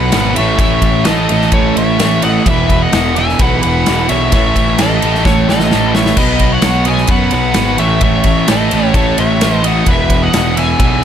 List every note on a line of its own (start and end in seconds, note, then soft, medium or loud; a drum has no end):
0.00 0.11 B2 medium
0.00 0.12 F#3 loud
0.00 0.11 B3 loud
0.00 0.34 B4 medium
0.00 0.35 F#5 medium
0.12 0.34 G#1 medium
0.12 0.34 B2 medium
0.12 0.34 F#3 medium
0.12 0.34 B3 medium
0.12 snare loud
0.12 ride medium
0.34 0.58 A2 loud
0.34 0.59 E3 loud
0.34 0.59 A3 loud
0.34 0.59 C#5 medium
0.34 0.58 E5 loud
0.34 ride medium
0.38 0.58 A1 medium
0.38 0.60 A2 loud
0.38 0.61 E3 medium
0.38 0.61 A3 loud
0.59 0.79 A1 loud
0.59 1.05 A2 loud
0.59 1.06 E3 loud
0.59 1.05 A3 loud
0.59 1.04 C#5 medium
0.59 1.08 E5 medium
0.59 kick loud
0.59 ride loud
0.82 1.02 A1 medium
0.82 kick medium
0.82 ride medium
1.04 1.27 A1 medium
1.04 1.27 A2 medium
1.04 1.28 E3 medium
1.04 1.28 A3 medium
1.04 1.49 D#5 loud
1.04 snare loud
1.04 ride loud
1.08 1.51 A4 medium
1.28 1.50 A1 medium
1.28 1.50 A2 medium
1.28 1.52 E3 medium
1.28 1.51 A3 loud
1.28 ride medium
1.41 snare soft
1.52 1.73 A1 loud
1.52 1.97 A2 medium
1.52 1.98 E3 loud
1.52 1.97 A3 loud
1.52 1.75 A4 medium
1.52 1.77 C#5 loud
1.52 kick loud
1.52 ride loud
1.76 1.97 A1 loud
1.76 2.21 C#5 medium
1.76 2.24 E5 medium
1.76 ride medium
1.98 2.40 A1 medium
1.98 2.20 A2 medium
1.98 2.22 E3 medium
1.98 2.21 A3 medium
1.98 snare loud
1.98 ride loud
2.03 2.25 A3 loud
2.21 2.44 A2 medium
2.21 2.47 E3 loud
2.21 2.45 A3 loud
2.21 2.46 D#5 medium
2.21 2.45 F#5 loud
2.21 ride medium
2.26 2.46 A2 medium
2.26 2.49 E3 loud
2.26 2.47 A3 loud
2.46 2.86 E1 loud
2.46 2.90 E2 medium
2.46 2.91 B2 loud
2.46 2.92 E3 loud
2.46 2.81 B4 medium
2.46 2.83 E5 medium
2.46 kick loud
2.46 ride medium
2.70 kick medium
2.70 ride medium
2.82 3.14 D#5 medium
2.82 3.18 F#5 medium
2.92 3.34 E1 medium
2.92 3.14 E2 medium
2.92 3.14 B2 loud
2.92 3.16 E3 loud
2.92 snare loud
2.92 ride medium
3.15 3.39 E2 medium
3.15 3.40 B2 medium
3.15 3.41 E3 loud
3.15 3.38 E5 medium
3.15 3.39 G#5 loud
3.15 ride medium
3.29 snare soft
3.39 3.59 B1 medium
3.39 3.86 E2 medium
3.39 3.86 B2 loud
3.39 3.86 E3 loud
3.39 3.60 B4 medium
3.39 3.63 F#5 loud
3.39 kick loud
3.39 ride loud
3.61 3.84 E1 medium
3.61 4.05 B4 medium
3.61 4.11 F#5 medium
3.61 ride medium
3.86 4.07 E1 medium
3.86 4.09 E2 medium
3.86 4.10 B2 medium
3.86 4.11 E3 medium
3.86 snare loud
3.86 ride medium
4.09 4.30 B1 medium
4.09 4.32 E2 medium
4.09 4.32 B2 medium
4.09 4.32 E3 medium
4.09 4.31 C#5 medium
4.09 4.31 E5 medium
4.09 ride medium
4.32 4.52 A1 loud
4.32 4.79 A2 medium
4.32 4.80 E3 loud
4.32 4.80 A3 medium
4.32 4.76 C#5 medium
4.32 4.81 E5 medium
4.32 kick loud
4.32 ride loud
4.56 4.76 A1 medium
4.56 kick medium
4.56 ride medium
4.78 4.99 A1 medium
4.78 5.02 A2 medium
4.78 5.02 E3 medium
4.78 5.02 A3 medium
4.78 5.21 A4 medium
4.78 snare loud
4.78 ride loud
4.82 5.24 D#5 medium
5.02 5.23 A1 medium
5.02 5.24 A2 medium
5.02 5.25 E3 medium
5.02 5.25 A3 medium
5.02 ride medium
5.15 snare soft
5.25 5.45 A1 medium
5.25 5.71 A2 medium
5.25 5.72 E3 medium
5.25 5.72 A3 medium
5.25 5.47 A4 medium
5.25 5.49 C#5 loud
5.25 kick loud
5.25 snare medium
5.49 5.69 A1 medium
5.49 5.92 A4 medium
5.49 5.94 D#5 medium
5.49 snare medium
5.60 snare medium
5.71 6.13 A1 medium
5.71 5.94 A2 medium
5.71 5.94 E3 medium
5.71 5.95 A3 medium
5.71 snare medium
5.95 6.16 A2 medium
5.95 6.17 E3 medium
5.95 6.17 A3 medium
5.95 6.16 C#5 medium
5.95 6.18 E5 medium
5.95 snare loud
6.06 snare medium
6.17 6.57 B1 medium
6.17 6.62 B2 loud
6.17 6.62 F#3 medium
6.17 6.63 B3 loud
6.17 6.50 B4 medium
6.17 6.54 D#5 loud
6.17 kick loud
6.17 crash loud
6.39 kick medium
6.39 ride medium
6.52 6.85 C#5 medium
6.52 6.88 F#5 medium
6.62 7.04 B1 medium
6.62 6.84 B2 medium
6.62 6.85 F#3 medium
6.62 6.84 B3 loud
6.62 snare loud
6.62 ride medium
6.85 7.07 B2 medium
6.85 7.07 F#3 medium
6.85 7.08 B3 medium
6.85 7.08 D#5 medium
6.85 7.11 G#5 medium
6.85 ride medium
6.98 snare soft
7.07 7.29 F#2 medium
7.07 7.54 B2 loud
7.07 7.54 F#3 loud
7.07 7.54 B3 loud
7.07 7.31 B4 medium
7.07 7.34 F#5 loud
7.07 kick loud
7.07 ride medium
7.31 7.53 B1 medium
7.31 7.77 B4 medium
7.31 ride medium
7.35 7.82 F#5 medium
7.54 7.76 G#1 medium
7.54 7.77 B2 medium
7.54 7.78 F#3 medium
7.54 7.78 B3 medium
7.54 snare loud
7.54 ride medium
7.77 7.98 A1 medium
7.77 7.99 A2 medium
7.77 8.00 E3 medium
7.77 7.99 A3 loud
7.77 8.01 C#5 medium
7.77 8.02 E5 medium
7.77 ride medium
8.00 8.22 A1 loud
8.00 8.46 A2 medium
8.00 8.47 E3 medium
8.00 8.47 A3 loud
8.00 8.46 C#5 medium
8.00 8.50 E5 medium
8.00 kick loud
8.00 ride loud
8.24 8.45 A1 medium
8.24 kick medium
8.24 ride medium
8.47 8.68 A1 medium
8.47 8.69 A2 medium
8.47 8.70 E3 medium
8.47 8.70 A3 loud
8.47 8.93 A4 medium
8.47 8.93 D#5 medium
8.47 snare loud
8.47 ride loud
8.70 8.93 A1 loud
8.70 8.92 A2 medium
8.70 8.94 E3 medium
8.70 8.93 A3 loud
8.70 ride medium
8.93 9.14 A1 medium
8.93 9.38 A2 medium
8.93 9.39 E3 medium
8.93 9.39 A3 loud
8.93 9.17 A4 medium
8.93 9.17 C#5 loud
8.93 kick loud
8.93 ride loud
9.18 9.38 A1 medium
9.18 9.62 C#5 medium
9.18 9.54 E5 loud
9.18 ride medium
9.39 9.82 A1 medium
9.39 9.61 A2 medium
9.39 9.62 E3 medium
9.39 9.62 A3 medium
9.39 snare loud
9.39 ride medium
9.54 9.66 D#5 loud
9.62 9.84 A2 medium
9.62 9.84 E3 medium
9.62 9.85 A3 loud
9.62 9.86 D#5 medium
9.62 ride medium
9.66 9.88 E3 medium
9.66 9.88 F#5 medium
9.85 10.27 E1 loud
9.85 10.31 E2 medium
9.85 10.31 B2 loud
9.85 10.31 E3 loud
9.85 10.20 B4 medium
9.85 kick loud
9.85 ride loud
9.91 10.25 E5 medium
10.10 kick medium
10.10 ride medium
10.22 10.55 D#5 medium
10.22 10.58 F#5 medium
10.32 10.74 E1 medium
10.32 10.54 E2 medium
10.32 10.53 B2 loud
10.32 10.53 E3 loud
10.32 snare loud
10.32 ride loud
10.54 10.77 E2 medium
10.54 10.77 B2 medium
10.54 10.77 E3 loud
10.54 11.04 E5 medium
10.54 ride medium
10.59 10.79 B2 medium
10.59 10.79 E3 medium
10.59 11.04 G#5 loud
10.78 11.00 B1 loud
10.78 11.04 E2 loud
10.78 11.04 B2 medium
10.78 11.04 E3 loud
10.78 kick loud
10.78 ride medium